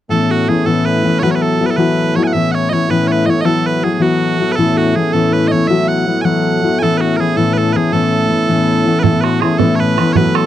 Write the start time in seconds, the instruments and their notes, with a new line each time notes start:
0.09 steel-string acoustic guitar A2 E3 B3 C#4 E4, harmonium A2 A3, bagpipes A4
0.31 bagpipes F#4
0.48 steel-string acoustic guitar E3 B3 C#4 E4, bagpipes G#4
0.65 steel-string acoustic guitar A2 E3 B3 C#4 E4, bagpipes A4
0.86 bagpipes B4
1.04 steel-string acoustic guitar E3 B3 C#4 E4
1.19 steel-string acoustic guitar E3 F#3, bagpipes B4 C#5
1.23 steel-string acoustic guitar B3 E4 F#4
1.31 bagpipes C#5
1.35 bagpipes B4
1.42 bagpipes A4
1.61 steel-string acoustic guitar F#3 B3 E4 F#4
1.66 bagpipes B4
1.71 bagpipes A4
1.77 steel-string acoustic guitar E3 F#3 B3 E4 F#4, bagpipes B4
2.15 steel-string acoustic guitar F#3 B3 E4 F#4, bagpipes C#5
2.24 bagpipes F#5 G#5
2.33 steel-string acoustic guitar A2 E3 B3 C#4 E4, bagpipes E5
2.51 bagpipes C#5 F#5
2.70 steel-string acoustic guitar E3 B3 C#4, bagpipes C#5 D#5
2.74 steel-string acoustic guitar E4
2.89 steel-string acoustic guitar A2 E3 B3 C#4 E4, bagpipes B4
3.07 bagpipes C#5
3.12 bagpipes B4
3.26 steel-string acoustic guitar E3 B3 C#4 E4, bagpipes D#5
3.30 bagpipes C#5
3.41 steel-string acoustic guitar E3 F#3 B3 E4, bagpipes D#5
3.45 steel-string acoustic guitar F#4, bagpipes A4
3.66 bagpipes B4
3.83 steel-string acoustic guitar F#3 B3 E4 F#4, bagpipes G#4
3.94 bagpipes G#4
3.99 steel-string acoustic guitar E3 F#3 B3 E4 F#4, bagpipes F#4
4.39 steel-string acoustic guitar F#3 B3 E4 F#4
4.52 bagpipes A4 B4
4.57 steel-string acoustic guitar A2 E3 B3 C#4 E4, harmonium A2 A3
4.77 bagpipes F#4
4.95 steel-string acoustic guitar E3 B3 C#4 E4, bagpipes G#4
5.13 steel-string acoustic guitar A2 E3 B3 C#4 E4, bagpipes A4
5.33 bagpipes B4
5.48 steel-string acoustic guitar E3, bagpipes D#5
5.52 steel-string acoustic guitar B3 C#4 E4, bagpipes C#5
5.68 steel-string acoustic guitar E3 F#3 B3 E4 F#4, bagpipes E5
5.88 bagpipes F#5
6.06 steel-string acoustic guitar F#3 B3 E4 F#4
6.22 steel-string acoustic guitar E3 F#3 B3 E4 F#4, bagpipes F#5 G#5
6.63 steel-string acoustic guitar F#3 B3 E4 F#4
6.79 steel-string acoustic guitar A2 E3 B3 C#4 E4, bagpipes A4 G#5
6.98 bagpipes F#4 B4
7.17 steel-string acoustic guitar E3 B3 C#4 E4, bagpipes G#4 A#4
7.36 steel-string acoustic guitar A2 E3 B3 C#4 E4, bagpipes A4
7.54 bagpipes B4
7.58 bagpipes A4
7.73 steel-string acoustic guitar E3 B3 C#4 E4, bagpipes G#4 B4
7.92 steel-string acoustic guitar A2 E3 B3 C#4 E4, bagpipes A4
8.29 steel-string acoustic guitar E3 B3 C#4 E4
8.48 steel-string acoustic guitar A2 E3 B3 C#4 E4
8.86 steel-string acoustic guitar E3 B3 C#4 E4
9.00 harmonium A2 A3, bagpipes A4 B4
9.04 steel-string acoustic guitar A2 E3 B3 C#4 E4, bodhran
9.14 bodhran
9.21 bagpipes F#4 B4, bodhran
9.41 steel-string acoustic guitar E3 B3 C#4 E4, bagpipes G#4, bodhran
9.58 steel-string acoustic guitar A2 E3 B3 C#4 E4, bagpipes A4, bodhran
9.75 bagpipes C#5
9.80 bagpipes B4, bodhran
9.98 steel-string acoustic guitar E3 B3 C#4 E4, bodhran
10.13 steel-string acoustic guitar E3 F#3 B3, bagpipes B4 C#5, bodhran
10.17 steel-string acoustic guitar E4 F#4
10.26 bodhran
10.35 bagpipes A4, bodhran